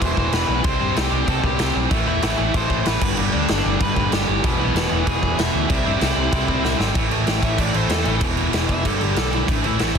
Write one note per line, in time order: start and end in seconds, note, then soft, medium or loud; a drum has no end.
0.00 0.12 E1 loud
0.00 0.65 E2 medium
0.00 0.17 E2 medium
0.00 0.63 B2 medium
0.00 0.17 B2 loud
0.00 0.64 E3 loud
0.00 0.16 E3 loud
0.00 0.32 C5 medium
0.00 0.34 C6 loud
0.00 kick loud
0.00 crash medium
0.17 0.28 E1 medium
0.17 0.31 E2 medium
0.17 0.32 B2 medium
0.17 0.34 E3 loud
0.17 kick medium
0.32 0.43 E1 loud
0.32 0.49 E2 loud
0.32 0.48 B2 loud
0.32 0.48 E3 loud
0.32 0.63 B4 medium
0.32 0.64 B5 loud
0.32 snare loud
0.32 crash medium
0.48 0.59 B1 medium
0.48 0.64 E2 medium
0.48 0.64 B2 medium
0.48 0.64 E3 medium
0.64 0.75 C2 loud
0.64 0.80 C3 loud
0.64 0.79 G3 loud
0.64 0.79 C4 loud
0.64 0.94 C5 medium
0.64 0.97 C6 loud
0.64 kick loud
0.64 crash medium
0.79 0.91 G2 loud
0.79 0.94 C3 medium
0.79 0.95 G3 medium
0.79 0.96 C4 medium
0.95 1.07 C2 medium
0.95 1.12 C3 loud
0.95 1.11 G3 loud
0.95 1.10 C4 loud
0.95 1.25 G4 medium
0.95 1.29 G5 loud
0.95 snare loud
0.95 crash medium
1.11 1.22 C2 medium
1.11 1.25 C3 medium
1.11 1.26 G3 medium
1.11 1.27 C4 loud
1.26 1.38 C2 loud
1.26 1.42 C3 medium
1.26 1.42 G3 loud
1.26 1.41 C4 loud
1.26 1.43 A4 medium
1.26 1.45 A5 loud
1.26 kick loud
1.26 crash medium
1.42 1.54 C2 medium
1.42 1.57 C3 medium
1.42 1.58 G3 medium
1.42 1.58 C4 loud
1.42 1.73 G4 medium
1.42 1.73 G5 medium
1.42 kick medium
1.58 1.70 C2 loud
1.58 1.75 C3 loud
1.58 1.74 G3 loud
1.58 1.73 C4 loud
1.58 snare loud
1.58 crash medium
1.75 1.86 B1 medium
1.75 1.90 C3 medium
1.75 1.90 G3 medium
1.75 1.90 C4 medium
1.90 2.01 A1 loud
1.90 2.07 A2 medium
1.90 2.06 E3 loud
1.90 2.05 A3 loud
1.90 kick loud
1.90 crash medium
2.07 2.17 E2 medium
2.07 2.20 A2 medium
2.07 2.21 E3 medium
2.07 2.22 A3 medium
2.07 2.22 E4 medium
2.07 2.23 E5 medium
2.22 2.33 A1 loud
2.22 2.38 A2 medium
2.22 2.37 E3 loud
2.22 2.36 A3 loud
2.22 2.52 E4 medium
2.22 2.56 E5 loud
2.22 snare loud
2.22 crash medium
2.37 2.49 A1 medium
2.37 2.51 A2 medium
2.37 2.52 E3 medium
2.37 2.53 A3 loud
2.53 2.65 A1 medium
2.53 2.70 A2 medium
2.53 2.69 E3 loud
2.53 2.68 A3 medium
2.53 2.84 C5 medium
2.53 2.87 C6 loud
2.53 kick loud
2.53 crash medium
2.69 2.80 A1 medium
2.69 2.84 A2 medium
2.69 2.85 E3 medium
2.69 2.85 A3 loud
2.69 kick medium
2.85 2.96 A1 medium
2.85 3.00 A2 loud
2.85 3.01 E3 loud
2.85 3.01 A3 loud
2.85 3.15 B4 medium
2.85 3.16 B5 loud
2.85 snare loud
2.85 crash medium
3.01 3.12 G1 medium
3.01 3.17 G2 loud
3.01 3.16 D3 loud
3.01 3.16 G3 loud
3.01 kick loud
3.01 crash loud
3.17 3.28 G1 loud
3.17 3.31 G2 medium
3.17 3.32 D3 loud
3.17 3.33 G3 loud
3.17 crash medium
3.32 3.44 D2 medium
3.32 3.49 G2 medium
3.32 3.48 D3 medium
3.32 3.48 G3 loud
3.32 3.47 D4 medium
3.32 3.48 D5 medium
3.48 3.60 G1 loud
3.48 3.63 G2 medium
3.48 3.64 D3 loud
3.48 3.65 G3 loud
3.48 3.79 D4 medium
3.48 3.78 D5 loud
3.48 snare loud
3.48 crash medium
3.64 3.76 G1 medium
3.64 3.80 G2 medium
3.64 3.80 D3 loud
3.64 3.79 G3 loud
3.80 3.91 G1 loud
3.80 3.95 G2 medium
3.80 3.96 D3 medium
3.80 3.96 G3 medium
3.80 4.10 B4 medium
3.80 4.10 B5 loud
3.80 kick loud
3.80 crash medium
3.96 4.06 G1 medium
3.96 4.13 G2 medium
3.96 4.12 D3 medium
3.96 4.11 G3 loud
3.96 kick medium
4.12 4.23 G1 loud
4.12 4.26 G2 medium
4.12 4.27 D3 medium
4.12 4.28 G3 loud
4.12 4.42 G4 medium
4.12 4.42 G5 medium
4.12 snare loud
4.12 crash medium
4.28 4.39 G1 loud
4.28 4.42 G2 medium
4.28 4.43 D3 medium
4.28 4.43 G3 medium
4.44 4.54 E1 loud
4.44 4.60 E2 loud
4.44 4.59 B2 loud
4.44 4.59 E3 loud
4.44 kick loud
4.44 crash medium
4.59 4.70 B1 medium
4.59 4.74 E2 medium
4.59 4.74 B2 medium
4.59 4.76 E3 medium
4.59 4.74 B3 medium
4.59 4.76 B4 medium
4.75 4.85 E1 loud
4.75 4.92 E2 loud
4.75 4.91 B2 loud
4.75 4.91 E3 loud
4.75 5.06 B3 medium
4.75 5.08 B4 medium
4.75 snare loud
4.75 crash medium
4.91 5.02 E1 medium
4.91 5.05 E2 loud
4.91 5.06 B2 medium
4.91 5.07 E3 loud
5.07 5.17 E1 loud
5.07 5.23 E2 medium
5.07 5.22 B2 loud
5.07 5.22 E3 loud
5.07 5.36 G#4 medium
5.07 5.39 G#5 medium
5.07 kick loud
5.07 crash medium
5.23 5.33 E1 medium
5.23 5.38 E2 medium
5.23 5.38 B2 medium
5.23 5.39 E3 medium
5.23 kick medium
5.39 5.49 E1 medium
5.39 5.54 E2 medium
5.39 5.54 B2 loud
5.39 5.54 E3 loud
5.39 5.68 E4 medium
5.39 5.69 E5 loud
5.39 snare loud
5.39 crash medium
5.54 5.64 D2 medium
5.54 5.69 E2 medium
5.54 5.69 B2 medium
5.54 5.70 E3 loud
5.69 5.80 C2 loud
5.69 5.86 C3 loud
5.69 5.85 G3 loud
5.69 5.84 C4 loud
5.69 6.76 E4 medium
5.69 6.76 E5 loud
5.69 kick loud
5.69 crash medium
5.85 5.96 G2 loud
5.85 6.00 C3 medium
5.85 6.01 G3 medium
5.85 6.02 C4 loud
6.01 6.11 C2 loud
6.01 6.16 C3 loud
6.01 6.16 G3 loud
6.01 6.15 C4 loud
6.01 snare loud
6.01 crash medium
6.16 6.27 C2 medium
6.16 6.30 C3 medium
6.16 6.31 G3 loud
6.16 6.32 C4 loud
6.31 6.43 C2 loud
6.31 6.48 C3 medium
6.31 6.47 G3 medium
6.31 6.46 C4 loud
6.31 kick loud
6.31 crash medium
6.47 6.59 C2 medium
6.47 6.62 C3 medium
6.47 6.63 G3 medium
6.47 6.63 C4 loud
6.47 kick medium
6.63 6.74 C2 loud
6.63 6.79 C3 loud
6.63 6.78 G3 loud
6.63 6.77 C4 loud
6.63 snare medium
6.78 6.90 G#1 medium
6.78 6.94 C3 medium
6.78 6.95 G3 medium
6.78 6.94 C4 loud
6.78 snare loud
6.94 7.08 A1 medium
6.94 7.10 A2 loud
6.94 7.10 E3 medium
6.94 7.09 A3 loud
6.94 kick loud
6.94 crash medium
7.10 7.24 A1 medium
7.10 7.24 A2 medium
7.10 7.25 E3 medium
7.10 7.26 A3 medium
7.10 crash medium
7.26 7.40 A1 medium
7.26 7.42 A2 medium
7.26 7.42 E3 medium
7.26 7.41 A3 medium
7.26 7.43 G5 medium
7.26 snare loud
7.26 crash medium
7.43 7.55 A1 medium
7.43 7.56 A2 medium
7.43 7.57 E3 medium
7.43 7.58 A3 loud
7.43 7.59 E5 medium
7.43 kick loud
7.43 crash medium
7.58 7.71 A1 medium
7.58 7.73 A2 medium
7.58 7.73 E3 medium
7.58 7.72 A3 loud
7.58 7.75 D5 medium
7.58 kick loud
7.58 crash medium
7.73 7.87 A1 medium
7.73 7.88 A2 medium
7.73 7.89 E3 medium
7.73 7.90 A3 medium
7.73 7.91 C5 medium
7.73 crash medium
7.90 8.03 E2 medium
7.90 8.06 A2 medium
7.90 8.05 E3 medium
7.90 8.05 A3 medium
7.90 8.22 A4 medium
7.90 snare loud
7.90 crash medium
8.05 8.19 A1 medium
8.05 8.21 A2 medium
8.05 8.21 E3 medium
8.05 8.21 A3 medium
8.05 crash medium
8.21 8.47 E1 loud
8.21 8.36 E2 medium
8.21 8.36 B2 medium
8.21 8.35 E3 loud
8.21 kick loud
8.21 crash medium
8.37 8.51 E2 medium
8.37 8.51 B2 medium
8.37 8.52 E3 medium
8.37 crash medium
8.52 8.66 E1 loud
8.52 8.69 E2 medium
8.52 8.68 B2 medium
8.52 8.67 E3 medium
8.52 snare loud
8.52 crash medium
8.69 8.82 F1 medium
8.69 8.85 E2 medium
8.69 8.84 B2 medium
8.69 8.84 E3 loud
8.69 8.85 E5 loud
8.69 kick loud
8.69 crash medium
8.85 8.98 G1 medium
8.85 9.00 G2 loud
8.85 9.00 D3 medium
8.85 8.99 G3 medium
8.85 9.03 A4 medium
8.85 kick medium
8.85 crash medium
9.00 9.13 G1 medium
9.00 9.15 G2 medium
9.00 9.15 D3 medium
9.00 9.16 G3 medium
9.00 9.18 G4 medium
9.00 crash medium
9.16 9.42 B1 medium
9.16 9.32 G2 medium
9.16 9.32 D3 medium
9.16 9.30 G3 medium
9.16 9.33 A4 medium
9.16 snare loud
9.16 crash medium
9.32 9.48 G2 medium
9.32 9.47 D3 medium
9.32 9.47 G3 loud
9.32 9.50 E4 medium
9.32 crash medium
9.47 9.61 A1 loud
9.47 9.63 A2 medium
9.47 9.62 E3 medium
9.47 9.61 A3 loud
9.47 9.65 D4 medium
9.47 kick loud
9.47 crash medium
9.62 9.77 A1 medium
9.62 9.78 A2 medium
9.62 9.79 E3 medium
9.62 9.79 A3 medium
9.62 9.80 E4 medium
9.62 crash medium
9.79 9.93 A1 loud
9.79 9.95 A2 medium
9.79 9.94 E3 medium
9.79 9.93 A3 medium
9.79 9.96 E4 loud
9.79 snare loud
9.79 crash medium
9.94 9.98 E3 medium
9.94 9.98 A3 loud